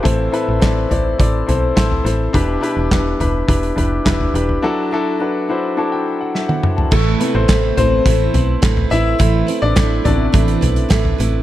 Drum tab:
CC |----------------|----------------|----------------|x---------------|
HH |x-x-x-x-x-x-x-x-|x-x-x-x-xxx-x-x-|----------------|--x-x-x-x-x-x-x-|
CP |----x-------x---|----x-------x---|----------------|----x-------x---|
SD |----o-------o-o-|----o-------o---|------------o---|----o-------o---|
T1 |----------------|----------------|-------------o--|----------------|
T2 |----------------|----------------|--------------o-|----------------|
FT |------o---o--o--|------o---o--o-o|---------------o|------o---o--o--|
BD |o---o---o---o---|o---o---o---o---|----------------|o---o---o---o---|

CC |----------------|
HH |x-x-x-x-xxxxx-x-|
CP |----x-------x---|
SD |----o-------o-o-|
T1 |----------------|
T2 |----------------|
FT |------o---o--o--|
BD |o---o---o---o---|